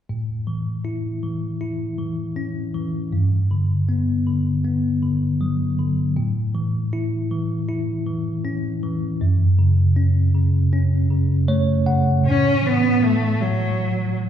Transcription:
0.09 A2
0.47 E3
0.85 E4
1.23 E3
1.61 E4
1.98 E3
2.36 C#4
2.74 E3
3.13 G2
3.51 D3
3.89 B3
4.27 D3
4.65 B3
5.03 D3
5.41 F#3
5.79 D3
6.17 A2
6.55 E3
6.93 E4
7.31 E3
7.69 E4
8.06 E3
8.45 C#4
8.83 E3
9.21 F#2
9.59 C#3
9.97 C#4
10.35 C#3
10.73 C#4
11.10 C#3
11.48 A3 C#5
11.86 C#3 F#5
12.24 A2 C#4
12.62 E3
12.66 B3
13.00 A2
13.04 A3
13.41 F#3

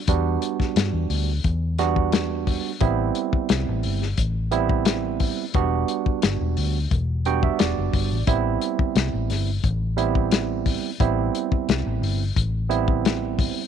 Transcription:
0.07 E2 G3 B3 D4 F#4, kick, closed hi-hat
0.42 closed hi-hat
0.60 kick, snare
0.76 G2, snare, closed hi-hat
0.93 E2
1.10 D2, open hi-hat
1.44 E2, kick, closed hi-hat
1.78 G3 B3 D4 F#4, snare, closed hi-hat
1.96 kick
2.12 snare, closed hi-hat
2.47 kick, open hi-hat
2.80 A1 G3 B3 C4 E4, kick, closed hi-hat
3.15 closed hi-hat
3.33 kick
3.49 C2, snare, closed hi-hat
3.69 A1
3.83 G1, open hi-hat
4.02 snare
4.18 A1, kick, closed hi-hat
4.51 G3 B3 C4 E4, closed hi-hat
4.69 kick
4.85 snare, closed hi-hat
5.20 kick, open hi-hat
5.54 E1 G3 B3 D4 F#4, kick, closed hi-hat
5.88 closed hi-hat
6.06 kick
6.22 G1, snare, closed hi-hat
6.41 E1
6.57 D2, open hi-hat
6.91 E1, kick, closed hi-hat
7.25 G3 B3 D4 F#4 G5, closed hi-hat
7.43 E5, kick
7.59 E1 D5, snare, closed hi-hat
7.78 F#1
7.93 G1, kick, open hi-hat
8.12 A1
8.27 A1 G3 B3 C4 E4, kick, closed hi-hat
8.62 closed hi-hat
8.79 kick
8.95 C2, snare, closed hi-hat
9.13 A1
9.30 G1, snare, open hi-hat
9.64 A1, kick, closed hi-hat
9.97 G3 B3 C4 E4, closed hi-hat
10.15 kick
10.31 snare, closed hi-hat
10.66 kick, open hi-hat
11.00 A1 G3 B3 C4 E4, kick, closed hi-hat
11.35 closed hi-hat
11.52 kick
11.69 C2, snare, closed hi-hat
11.86 A1
12.02 G1, open hi-hat
12.36 A1, kick, closed hi-hat
12.69 G3 B3 C4 E4, closed hi-hat
12.88 kick
13.05 snare, closed hi-hat
13.39 kick, open hi-hat

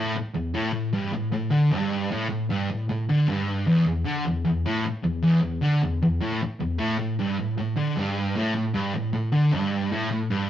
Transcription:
Already playing: A2
0.15 muted distorted electric guitar stroke
0.35 E2
0.55 A2
0.73 A2
0.93 G2
1.12 A2
1.33 A2
1.51 D3
1.71 G2
2.11 A2
2.29 A2
2.50 G2
2.69 A2
2.89 A2
3.09 D3
3.27 G2
3.67 E2
3.86 E2
4.05 D3
4.25 E2
4.45 E2
4.66 A2
4.85 muted distorted electric guitar stroke
5.03 E2
5.22 E2
5.42 E2
5.62 D3
5.82 E2
6.02 E2
6.21 A2
6.42 muted distorted electric guitar stroke
6.60 E2
6.79 A2
6.99 A2
7.19 G2
7.39 A2
7.58 A2
7.77 D3
7.96 G2
8.36 A2
8.55 A2
8.74 G2
8.94 A2
9.13 A2
9.32 D3
9.52 G2
9.91 A2
10.11 A2
10.30 G2

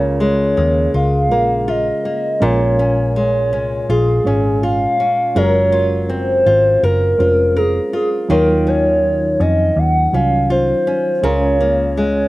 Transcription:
Already playing: C#2 C#3 G#3 A#3 C#4 F4 A#4 C#5
0.20 G#3 C#5
0.57 D#2 A#3
0.94 C#2 F4 F5
1.29 A#1 G#3 A#3 C#4 F4 A#4
1.68 F4 D#5
2.05 A#3
2.40 A#1 A#2 G#3 C#4 F4 A#4 C#5
2.79 C#4
3.16 G#3 C#5
3.52 C2 C#4
3.89 A#1 F4 G#4
4.24 G#1 G#3 C#4 F4 C#5
4.63 F4 F5
5.00 C#4
5.35 F#1 F#3 G#3 C#4 F4 G#4 A#4 C#5
5.44 A#4
5.73 F4
6.09 C4 C5
6.46 G#1 F4
6.83 F#1 A#4
7.18 F1 G#3 C#4 F4 C5
7.57 G#4 A#4
7.93 F4 G#4
8.29 D#2 D#3 F#3 D#4 F4 A#4 C#5
8.67 C#4 C#5
9.40 F2 C#4 D#5
9.76 D#2 F#5
10.12 C2 F#3 C#4 D#4 F4 F5
10.50 F4 C5
10.87 C#4
11.22 C#2 C#3 G#3 C#4 F4 A#4 C#5
11.61 A#3
11.98 G#3 C#5

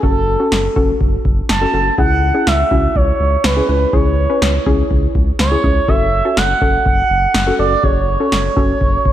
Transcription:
0.03 F#1 C#4 F#4 A4, kick
0.40 C#4 F#4 A4
0.52 F#1, snare
0.76 F#1 C#4 F#4 A4, kick
1.01 F#1, kick
1.25 F#1, kick
1.49 F#1 A5, snare
1.62 C#4 F#4 A4
1.74 F#1 C#4 F#4 A4
1.98 C#2 C#4 E4 G#4 F#5, kick
2.34 C#4 E4 G#4
2.47 C#2 E5, snare
2.71 C#2 C#4 E4 F#4, kick
2.96 C#2 C#5, kick
3.20 C#2
3.44 C#2 B4, snare
3.57 C#4 E4 G#4
3.69 C#2 C#4 E4 B4
3.93 C#2 C#4 E4 G#4 C#5, kick
4.30 C#4 E4 B4
4.42 C#2, snare
4.66 C#2 C#4 E4 G#4, kick
4.91 C#2, kick
5.15 C#2, kick
5.39 C#2 C#5, snare
5.52 C#4 E4 G#4
5.64 C#2 C#4 E4 G#4, kick
5.88 F#1 C#4 F#4 A4 E5, kick
6.25 C#4 F#4 A4
6.37 F#1 F#5, snare
6.61 F#1 C#4 F#4 A4, kick
6.86 F#1 F#5, kick
7.10 F#1
7.34 F#1, snare
7.47 C#4 F#4 A4
7.59 F#1 C#4 F#4 A4 D5
7.83 F#1 C#4 F#4 G#4 C#5, kick
8.20 C#4 F#4 A4
8.32 F#1, snare
8.56 F#1 C#4 F#4 A4, kick
8.81 F#1, kick
9.05 F#1, kick

